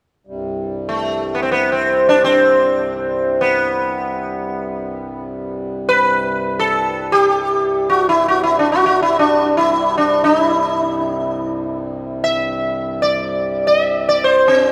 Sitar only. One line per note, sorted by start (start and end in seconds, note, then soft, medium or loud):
0.89 1.35 A3 medium
1.35 1.42 B3 medium
1.42 1.51 C4 medium
1.52 1.71 B3 medium
1.72 2.08 C4 medium
2.09 2.24 D4 medium
2.24 3.41 C4 medium
3.41 5.23 B3 medium
5.89 6.59 B4 medium
6.59 7.14 A4 medium
7.12 7.89 G4 medium
7.90 8.09 F#4 medium
8.09 8.27 E4 medium
8.28 8.43 F#4 medium
8.43 8.58 E4 medium
8.59 8.71 D4 medium
8.72 8.85 F#4 medium
8.86 9.00 F#4 medium
9.02 9.18 E4 medium
9.19 9.57 D4 medium
9.57 9.97 E4 medium
9.98 10.24 D4 medium
10.24 10.42 D#4 medium
10.42 11.51 E4 medium
12.24 13.02 E5 medium
13.02 13.67 D5 medium
13.67 13.83 D#5 medium
13.83 14.08 E5 medium
14.09 14.23 D5 medium
14.24 14.47 C5 medium
14.48 14.72 C4 medium